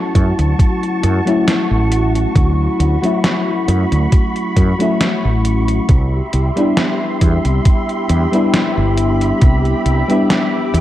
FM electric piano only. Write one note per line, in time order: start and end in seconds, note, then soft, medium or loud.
0.00 1.21 F#3 medium
0.00 1.21 A3 medium
0.00 1.22 C#4 medium
0.00 1.22 E4 medium
1.25 2.97 F#3 medium
1.25 2.98 A3 medium
1.25 2.98 C#4 medium
1.25 2.99 E4 medium
3.02 4.74 F#3 medium
3.02 4.74 A3 medium
3.02 4.75 C#4 medium
3.02 4.75 E4 medium
4.79 5.86 F#3 medium
4.79 5.86 A3 medium
4.79 5.87 C#4 medium
4.79 5.87 E4 medium
6.56 8.27 G3 medium
6.56 8.28 B3 medium
6.56 8.28 D4 medium
6.56 8.29 E4 medium
8.32 10.03 G3 medium
8.32 10.04 B3 medium
8.32 10.04 D4 medium
8.32 10.05 E4 medium
10.08 10.81 G3 medium
10.08 10.81 B3 medium
10.08 10.81 D4 medium
10.08 10.81 E4 medium